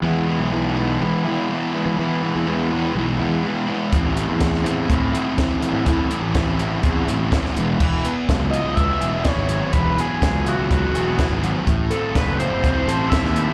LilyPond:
<<
  \new Staff \with { instrumentName = "Analog synth lead" } { \time 4/4 \key e \major \tempo 4 = 124 r1 | r1 | r1 | r1 |
r4. dis''8 e''4 cis''4 | b'8 gis'8 gis'8 fis'8 fis'4. r8 | r8 a'8 b'8 c''4. e''4 | }
  \new Staff \with { instrumentName = "Distorted electric guitar" } { \time 4/4 \key e \major <e gis b e'>8 <gis b e'>8 <e gis b e'>8 <e gis b e'>8 <e gis b e'>8 <e gis b e'>8 <e gis b e'>8 <gis b e'>8 | <e gis b e'>8 <gis b e'>8 <e gis b e'>8 <e gis b e'>8 <e gis b e'>8 <e gis b e'>8 <e gis b e'>8 <gis b e'>8 | <a, e a c' e'>8 <a c' e'>8 <e a c' e'>8 <a, e a c' e'>8 <e a c' e'>8 <a, e a c' e'>8 <e a c' e'>8 <a c' e'>8 | <a, e a c' e'>8 <a c' e'>8 <e a c' e'>8 <a, e a c' e'>8 <e a c' e'>8 <a, e a c' e'>8 <e a c' e'>8 <e gis b e'>8 |
e8 b8 fis8 e'8 b8 gis'8 e'8 fis8 | e8 b8 fis8 e'8 b8 gis'8 e'8 fis8 | a,8 c'8 a8 e'8 c'8 a'8 e'8 a8 | }
  \new Staff \with { instrumentName = "Fingered electric bass" } { \clef bass \time 4/4 \key e \major e,8. b,,4~ b,,16 e8 r4 r16 e16 | e8. e,4~ e,16 b,,8 e,8 r4 | a,,8. e,4~ e,16 a,8 r4 r16 a,16 | a,8. a,,4~ a,,16 e,8 a,,8 r8 e,,8 |
e,,8 r8 cis,8. cis,8 r16 e,,8 r16 gis,,8 r16 | e,,8 r8 cis,8. cis,8 r16 e,,8 r16 gis,,8 r16 | a,,8 r8 fis,,8. fis,,8 r16 a,,8 r16 dis,8 r16 | }
  \new DrumStaff \with { instrumentName = "Drums" } \drummode { \time 4/4 r4 r4 r4 r4 | r4 r4 r4 r4 | <hh bd>8 hh8 <hh bd sn>16 sn16 hh8 <hh bd>8 hh8 <hh bd sn>8 hh8 | <hh bd>8 hh8 <hh bd sn>8 hh8 <hh bd>8 hh8 <hh bd sn>16 sn16 hh8 |
<cymc bd>8 hh8 <hh bd sn>8 hh8 <hh bd>8 hh8 <hh bd sn>8 hh8 | <hh bd>8 hh8 <hh bd sn>8 hh8 <hh bd>8 hh8 <hh bd sn>8 hh8 | <hh bd>8 hh8 <hh bd sn>8 hh8 <hh bd>8 hh8 <hh bd sn>16 sn16 hh8 | }
>>